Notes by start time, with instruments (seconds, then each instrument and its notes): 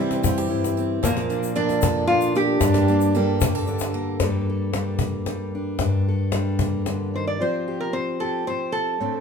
Already playing: steel-string acoustic guitar C3 E3 G3 C4 E4, french horn G3, resonator guitar played with a steel bar C4
0.00 steel-string acoustic guitar E4 G4
0.11 cajon slap, shaker
0.23 steel-string acoustic guitar C4 F4, cajon bass, shaker
0.38 steel-string acoustic guitar G4
0.50 steel-string acoustic guitar G2 E4
0.64 cajon slap, shaker
0.77 steel-string acoustic guitar C4, shaker
1.03 steel-string acoustic guitar A#2 F3, french horn F3, resonator guitar played with a steel bar A#3, cajon bass, shaker
1.17 cajon slap
1.29 steel-string acoustic guitar A#3 D4, shaker
1.43 shaker
1.55 steel-string acoustic guitar F3 A#3 D4 F4 A4, french horn A#3, resonator guitar played with a steel bar D4
1.69 cajon slap, shaker
1.82 steel-string acoustic guitar D4 A4, cajon bass, shaker
2.07 steel-string acoustic guitar A#2 D4, french horn D4, resonator guitar played with a steel bar F4
2.21 shaker
2.35 steel-string acoustic guitar A#3, french horn D4, resonator guitar played with a steel bar G4, shaker
2.61 steel-string acoustic guitar G2 G3 A#3 D4, cajon bass, cajon slap, shaker
2.74 cajon slap, shaker
2.88 steel-string acoustic guitar A#3, shaker
3.01 shaker
3.15 steel-string acoustic guitar G3 A#3 D4 A4, shaker
3.41 steel-string acoustic guitar A#3 G4, cajon bass, shaker
3.55 steel-string acoustic guitar A4, cajon slap
3.67 steel-string acoustic guitar D3 D4, shaker
3.79 cajon slap, shaker
3.94 steel-string acoustic guitar A#3, cajon slap
4.20 steel-string acoustic guitar G2 G3 A#3 D4, cajon bass, cajon slap
4.24 steel-string acoustic guitar A4
4.50 steel-string acoustic guitar A4
4.74 steel-string acoustic guitar G3 D4, cajon slap
4.99 steel-string acoustic guitar A#3, cajon bass
5.26 steel-string acoustic guitar G3, cajon slap
5.55 steel-string acoustic guitar D4
5.79 steel-string acoustic guitar G2 D4, cajon bass, cajon slap
6.08 steel-string acoustic guitar A4
6.32 steel-string acoustic guitar G3 D4, cajon slap
6.59 steel-string acoustic guitar A#3, cajon bass
6.86 steel-string acoustic guitar D3, cajon slap
7.14 steel-string acoustic guitar D#3, resonator guitar played with a steel bar C5
7.27 resonator guitar played with a steel bar D5
7.40 steel-string acoustic guitar F3 C4 F4 G4, resonator guitar played with a steel bar C5
7.68 steel-string acoustic guitar G4
7.80 resonator guitar played with a steel bar A#4
7.93 steel-string acoustic guitar C4, resonator guitar played with a steel bar C5
8.20 steel-string acoustic guitar G4, resonator guitar played with a steel bar A4
8.47 steel-string acoustic guitar C4 G4, resonator guitar played with a steel bar C5
8.72 resonator guitar played with a steel bar A4
9.00 steel-string acoustic guitar A2 A3 C4 D4